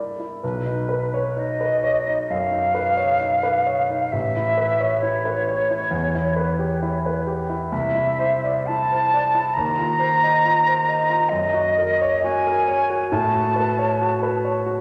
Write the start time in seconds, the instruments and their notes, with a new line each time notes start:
Already playing: grand piano G2 E4 A#4 D5
0.19 grand piano E4
0.42 grand piano B1, flute B4
0.66 grand piano D#4
0.89 grand piano B4
1.14 grand piano C#5
1.37 grand piano D#4, flute D#5
1.61 grand piano B4
1.83 grand piano C#5
2.07 grand piano D#4
2.30 grand piano F#2, flute F5
2.52 grand piano D#4
2.75 grand piano B4
2.97 grand piano C#5
3.20 grand piano D#4
3.43 grand piano B4
3.66 grand piano C#5
3.90 grand piano D#4
4.12 grand piano A1, flute E5
4.36 grand piano E4
4.58 grand piano B4
4.80 grand piano C#5
5.01 grand piano E4, flute C#5
5.25 grand piano B4
5.48 grand piano C#5
5.71 grand piano E4
5.91 grand piano E2
6.15 grand piano E4
6.36 grand piano B4
6.59 grand piano G4
6.82 grand piano E4
7.06 grand piano B4
7.27 grand piano G4
7.50 grand piano E4
7.70 grand piano C2, flute E5
7.95 grand piano E4
8.19 grand piano C5
8.44 grand piano D5
8.66 grand piano E4, flute A5
8.91 grand piano C5
9.14 grand piano D5
9.35 grand piano E4
9.54 grand piano D#2, flute A#5
9.78 grand piano F4
9.99 grand piano C5
10.23 grand piano D#5
10.45 grand piano F4
10.67 grand piano C5
10.89 grand piano D#5
11.10 grand piano F4
11.29 grand piano F#2, flute D#5
11.54 grand piano F#4
11.78 grand piano A#4
12.01 grand piano C#5
12.23 grand piano F#4, flute G#5
12.47 grand piano A#4
12.68 grand piano C#5
12.90 grand piano F#4
13.11 grand piano A2, flute A5
13.35 grand piano F#4
13.56 grand piano B4
13.79 grand piano C#5
14.02 grand piano F#4
14.23 grand piano B4
14.45 grand piano C#5
14.66 grand piano F#4